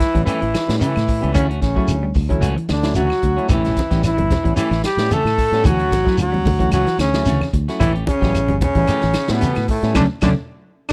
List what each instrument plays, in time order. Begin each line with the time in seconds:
Already playing: baritone saxophone E3, trombone E4
0.00 muted clean electric guitar stroke, kick, snare, closed hi-hat, shekere
0.14 fingered electric bass A1, clean electric guitar E3, tine electric piano G3 B3 C#4 E4, muted clean electric guitar stroke, kick, closed hi-hat
0.25 clean electric guitar E3 A3 C#4 G4, baritone saxophone E3, trombone E4, muted fingered electric bass stroke, closed hi-hat, claves, shekere
0.41 fingered electric bass A1, clean electric guitar E3, muted clean electric guitar stroke, closed hi-hat
0.54 muted clean electric guitar stroke, snare, closed hi-hat, claves, shekere
0.68 fingered electric bass A2, tine electric piano G3 B3 C#4 E4, snare, closed hi-hat
0.79 clean electric guitar C#3 E3 A3 C#4 G4, baritone saxophone E3, trombone E4, closed hi-hat, shekere
0.96 fingered electric bass A2, muted clean electric guitar stroke, snare, closed hi-hat, claves
1.08 muted clean electric guitar stroke, kick, open hi-hat, shekere
1.21 fingered electric bass C#2, tine electric piano G3 B3 C#4 E4, clean electric guitar A3 C#4 G4, closed hi-hat
1.34 fingered electric bass D2, baritone saxophone C#3, clean electric guitar D3 E3 A3 C#4 F#4, trombone C#4, kick, closed hi-hat, claves, shekere
1.49 clean electric guitar A3 C#4 F#4, closed hi-hat
1.61 fingered electric bass A1, baritone saxophone C#3, trombone C#4, muted clean electric guitar stroke, kick, snare, closed hi-hat, shekere
1.76 tine electric piano F#3 A3 C#4 E4, clean electric guitar F#3 A3 C#4 F#4, muted fingered electric bass stroke, kick
1.88 fingered electric bass D2, muted clean electric guitar stroke, closed hi-hat, claves, shekere
2.03 clean electric guitar G3
2.14 fingered electric bass D2, muted clean electric guitar stroke, kick, open hi-hat, shekere
2.29 clean electric guitar E3, tine electric piano F#3 A3 C#4 E4, muted clean electric guitar stroke, kick, closed hi-hat
2.40 fingered electric bass C#2, clean electric guitar E3 A3 C#4 F#4, closed hi-hat, claves, shekere
2.56 clean electric guitar E3, muted clean electric guitar stroke, muted fingered electric bass stroke, closed hi-hat
2.69 fingered electric bass D2, baritone saxophone D3, trombone D4, muted clean electric guitar stroke, snare, closed hi-hat, claves, shekere
2.83 tine electric piano F#3 A3 C#4 E4, snare, closed hi-hat
2.94 fingered electric bass D2, clean electric guitar C#3 E3 A3 C#4 F#4, baritone saxophone F#3, trombone F#4, closed hi-hat, shekere
3.09 muted clean electric guitar stroke, snare, claves
3.22 fingered electric bass D2, muted clean electric guitar stroke, kick, closed hi-hat, shekere
3.36 tine electric piano F#3 A3 C#4 E4, clean electric guitar A3 C#4 F#4, closed hi-hat
3.49 fingered electric bass A1, clean electric guitar E3 A3 C#4 G4, baritone saxophone E3, trombone E4, kick, closed hi-hat, high conga, low conga, claves, shekere
3.64 clean electric guitar A3 C#4 G4, snare, closed hi-hat, low conga
3.76 muted clean electric guitar stroke, kick, snare, closed hi-hat, high conga, shekere
3.91 fingered electric bass A1, clean electric guitar E3 C#4 G4, tine electric piano G3 B3 C#4 E4, muted clean electric guitar stroke, kick, snare, closed hi-hat
4.03 baritone saxophone E3, trombone E4, muted clean electric guitar stroke, snare, closed hi-hat, high conga, claves, shekere
4.17 fingered electric bass G1, clean electric guitar G3, closed hi-hat, high conga
4.30 muted clean electric guitar stroke, kick, snare, closed hi-hat, high conga, low conga, shekere
4.43 fingered electric bass A1, clean electric guitar E3, tine electric piano G3 B3 C#4 E4, muted clean electric guitar stroke, kick, closed hi-hat
4.56 clean electric guitar E3 A3 C#4 G4, baritone saxophone E3, trombone E4, closed hi-hat, high conga, claves, shekere
4.71 fingered electric bass A1, clean electric guitar E3, muted clean electric guitar stroke, snare, closed hi-hat
4.83 baritone saxophone G3, trombone G4, muted clean electric guitar stroke, snare, closed hi-hat, claves, shekere
4.97 fingered electric bass A2, tine electric piano G3 B3 C#4 E4, snare, closed hi-hat
5.10 clean electric guitar C#3 A3 C#4 G4, baritone saxophone A3, trombone A4, closed hi-hat, high conga, shekere
5.25 fingered electric bass A2, muted clean electric guitar stroke, snare, closed hi-hat, claves
5.38 muted clean electric guitar stroke, kick, open hi-hat, shekere
5.52 fingered electric bass A2, tine electric piano G3 B3 C#4 E4, clean electric guitar C#4 G4, muted clean electric guitar stroke, snare, closed hi-hat
5.64 fingered electric bass D2, clean electric guitar E3 C#4, baritone saxophone F#3, trombone F#4, muted clean electric guitar stroke, kick, closed hi-hat, high conga, low conga, claves, shekere
5.79 clean electric guitar A3 C#4 F#4, closed hi-hat
5.92 fingered electric bass A1, muted clean electric guitar stroke, kick, snare, closed hi-hat, high conga, shekere
6.04 tine electric piano F#3 A3 C#4 E4, clean electric guitar F#3, muted fingered electric bass stroke, kick, snare
6.08 clean electric guitar A3 C#4 F#4
6.18 fingered electric bass D2, baritone saxophone F#3, trombone F#4, muted clean electric guitar stroke, closed hi-hat, claves, shekere
6.32 clean electric guitar G3, high conga
6.45 fingered electric bass D2, muted clean electric guitar stroke, kick, open hi-hat, high conga, low conga, shekere
6.59 clean electric guitar E3, tine electric piano F#3 A3 C#4 F#4, muted clean electric guitar stroke, kick, closed hi-hat
6.71 fingered electric bass C#2, clean electric guitar E3 A3 C#4 F#4, baritone saxophone F#3, trombone F#4, closed hi-hat, claves, shekere
6.87 clean electric guitar E3, muted fingered electric bass stroke, muted clean electric guitar stroke, snare, closed hi-hat
6.98 fingered electric bass D2, baritone saxophone C#3, trombone C#4, muted clean electric guitar stroke, snare, closed hi-hat, claves, shekere
7.14 tine electric piano F#3 A3 C#4 E4, snare, closed hi-hat
7.26 fingered electric bass D2, clean electric guitar C#3 E3 A3 C#4 F#4, snare, closed hi-hat, high conga, shekere
7.41 muted clean electric guitar stroke, snare, high conga, claves
7.53 fingered electric bass D2, muted clean electric guitar stroke, kick, closed hi-hat, shekere
7.68 tine electric piano F#3 A3 C#4 E4, clean electric guitar A3 C#4 F#4, snare, closed hi-hat
7.80 fingered electric bass A1, clean electric guitar E3 A3 C#4 G4, baritone saxophone E3, trombone E4, kick, closed hi-hat, high conga, low conga, claves, shekere
7.95 clean electric guitar A3 C#4 G4, closed hi-hat
8.05 trombone C#4, muted clean electric guitar stroke, kick, closed hi-hat, high conga, shekere
8.10 baritone saxophone C#3
8.21 fingered electric bass A1, clean electric guitar F#3 A3 C#4 G4, tine electric piano G3 B3 C#4 E4, kick, snare, closed hi-hat
8.34 muted clean electric guitar stroke, closed hi-hat, claves, shekere
8.48 fingered electric bass G1, clean electric guitar G3, closed hi-hat, high conga
8.61 baritone saxophone C#3, trombone C#4, muted clean electric guitar stroke, kick, closed hi-hat, high conga, low conga, shekere
8.74 fingered electric bass A1, clean electric guitar E3, tine electric piano G3 B3 C#4 E4, muted clean electric guitar stroke, kick, closed hi-hat
8.87 clean electric guitar E3 A3 C#4 G4, closed hi-hat, claves, shekere
9.02 fingered electric bass A1, clean electric guitar E3, muted clean electric guitar stroke, snare, closed hi-hat
9.13 muted clean electric guitar stroke, snare, closed hi-hat, claves, shekere
9.28 fingered electric bass A2, tine electric piano G3 B3 C#4 E4, snare, closed hi-hat
9.32 baritone saxophone B2, trombone B3
9.41 clean electric guitar C#3 E3 A3 C#4 G4, snare, closed hi-hat, high conga, shekere
9.55 fingered electric bass A2, snare, closed hi-hat, claves
9.68 trombone A3, muted clean electric guitar stroke, kick, open hi-hat, shekere
9.72 baritone saxophone A2
9.82 fingered electric bass A2, tine electric piano G3 B3 C#4 E4, clean electric guitar A3 C#4, snare, closed hi-hat
9.94 fingered electric bass D2, clean electric guitar C#3 D3 F#3 A3 C#4 D4, baritone saxophone D3, tine electric piano A3 C#4 D4, trombone D4, kick, snare, low conga, claves, shekere
10.22 fingered electric bass D2, clean electric guitar C#3 D3 F#3 A3 C#4 D4, baritone saxophone D3, tine electric piano A3 C#4 D4, trombone D4, kick, snare, low conga, claves, shekere
10.89 trombone D4, claves